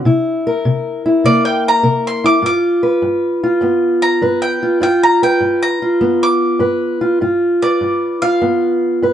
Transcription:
0.05 steel-string acoustic guitar C3 E4
0.47 steel-string acoustic guitar A#4
0.65 steel-string acoustic guitar C3
1.06 steel-string acoustic guitar E4
1.24 steel-string acoustic guitar C3 A#3, mandolin D5
1.45 mandolin G5
1.68 mandolin A#5
1.83 steel-string acoustic guitar C3 A#4
2.07 mandolin C6
2.24 steel-string acoustic guitar E4, mandolin D6
2.42 steel-string acoustic guitar G2 F4
2.46 mandolin D6
2.83 steel-string acoustic guitar B4
3.02 steel-string acoustic guitar G2
3.44 steel-string acoustic guitar F4
3.61 steel-string acoustic guitar G2 B3
4.02 mandolin A#5
4.22 steel-string acoustic guitar G2 B4
4.42 mandolin G5
4.63 steel-string acoustic guitar F4
4.80 steel-string acoustic guitar G2 F4, mandolin G5
5.03 mandolin A#5
5.23 steel-string acoustic guitar B4, mandolin G5
5.41 steel-string acoustic guitar G2
5.63 mandolin A#5
5.82 steel-string acoustic guitar F4
6.01 steel-string acoustic guitar G2 B3
6.23 mandolin D6
6.59 steel-string acoustic guitar G2 B4
7.01 steel-string acoustic guitar F4
7.21 steel-string acoustic guitar G2 F4
7.62 steel-string acoustic guitar B4, mandolin D5
7.81 steel-string acoustic guitar G2
8.22 steel-string acoustic guitar F4, mandolin F5
8.42 steel-string acoustic guitar G2 B3
9.02 steel-string acoustic guitar G2 B4

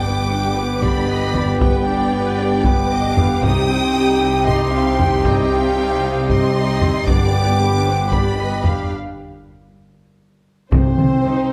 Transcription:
Already playing: double bass section G1, cello section G2, french horn section G3 B3, trumpet section G4, violin section G5 D6
0.05 viola section B3 B4
0.31 viola section D4 G4, violin section G5
0.57 viola section B3 B4, violin section B4
0.82 viola section D4 G4, violin section D5 B5, taiko
1.09 viola section B3 B4, violin section D#5
1.35 viola section D4 G4, violin section D5, taiko low
1.60 viola section B3 B4, violin section B4 G5, taiko
1.86 viola section D4 G4, violin section D5
2.15 viola section B3 B4
2.40 viola section D4 G4
2.64 viola section B3 B4, violin section B4 D6, taiko
2.91 viola section D4 G4, violin section D#5
3.17 viola section B3 B4, violin section F5, taiko low
3.42 double bass section C2, timpani C3, cello section C3, french horn section G3 C4, viola section D#4 G4, trumpet section G4, violin section G5 D#6, taiko
3.70 viola section C4 D#4
3.95 viola section D#4 G4
4.21 viola section C4 D#4
4.46 viola section D#4 G4, violin section D#5 C6, taiko
4.73 viola section C4 D#4, violin section F5
4.99 viola section D#4 G4, violin section G5, taiko low
5.25 viola section C4 D#4, violin section D#5 G5, taiko
5.51 viola section D#4 G4, violin section F5
5.76 viola section C4 D#4
6.03 viola section D#4 G4
6.29 viola section C4 D#4, violin section D#5 C6, taiko
6.56 viola section D#4 G4
6.82 viola section C4 D#4, taiko low
7.07 double bass section G1, cello section G2, timpani G2, french horn section G3 B3, viola section D4 G4, trumpet section G4, violin section D5 D6, taiko
7.35 viola section B3 B4
7.61 viola section D4 G4, violin section B4
7.87 viola section B3 B4, violin section C5
8.11 viola section D4 G4, violin section D5 B5, taiko
8.39 viola section B3 B4, violin section D#5
8.64 viola section D4 G4, violin section F5, taiko low
10.72 double bass section C2, cello section C3, timpani C3, french horn section C4, violin section C5, taiko
10.98 double bass section C2, cello section C3, taiko mid
11.24 double bass section C2, cello section C3, viola section D#4

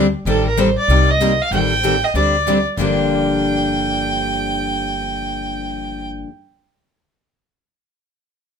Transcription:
Already playing: upright bass D2
0.25 upright bass A1, steel-string acoustic guitar D#3 G3 C4 G4 A4, violin A4
0.47 violin A#4
0.57 steel-string acoustic guitar D#3 G3 C4 G4 A4, violin C5
0.78 violin D5
0.88 upright bass C2, steel-string acoustic guitar C3 G3 A#3 D#4 G4
1.11 violin D#5
1.21 steel-string acoustic guitar C3 G3 A#3 D#4 G4
1.42 violin F5
1.51 upright bass A1, steel-string acoustic guitar D#3 G3 C4 G4 A4, violin G5
1.83 steel-string acoustic guitar D#3 G3 C4 G4 A4
2.05 violin D#5
2.14 upright bass D2, steel-string acoustic guitar D3 G3 C4 D4 G4, violin D5
2.47 steel-string acoustic guitar D3 G3 C4 D4 G4
2.77 upright bass G1, steel-string acoustic guitar G2 D3 F3 A#3 D4 G4, violin G5

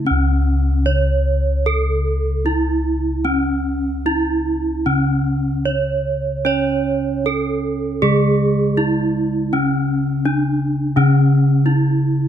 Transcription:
Already playing: kettle gongs C#3
0.05 kettle gongs C#4, bronze metallophone C#4
0.10 kettle gongs C#2
0.85 kettle gongs D4, bronze metallophone C#5
1.66 bronze metallophone A4
2.45 kettle gongs D4, bronze metallophone E4
3.25 bronze metallophone C#4, kettle gongs C#4
4.05 kettle gongs D4, bronze metallophone E4
4.86 kettle gongs C#3, bronze metallophone C#4
5.65 kettle gongs D4, bronze metallophone C#5
6.45 bronze metallophone C#4 C#5, kettle gongs C#5
7.24 kettle gongs D4, bronze metallophone A4
8.02 kettle gongs C#3, bronze metallophone G#3 G#4
8.77 kettle gongs D4, bronze metallophone E4
9.52 bronze metallophone C#3 C#4, kettle gongs C#4
10.25 kettle gongs D4, bronze metallophone D4
10.96 bronze metallophone C#3 C#4, kettle gongs C#3
11.66 kettle gongs D4, bronze metallophone E4

